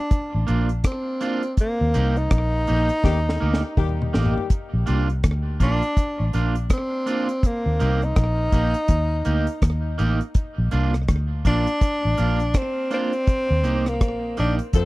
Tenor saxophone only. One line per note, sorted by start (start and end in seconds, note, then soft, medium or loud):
0.00 0.45 D4 loud
0.87 1.55 C4 medium
1.60 2.19 A#3 medium
2.18 4.14 D#4 loud
5.63 6.31 D4 loud
6.73 7.48 C4 medium
7.46 8.06 A#3 medium
8.04 10.00 D#4 loud
11.47 12.59 D4 loud
12.57 12.93 C4 loud
12.94 13.90 C4 loud
13.88 14.38 A#3 medium
14.40 14.56 D4 medium
14.77 14.85 C4 medium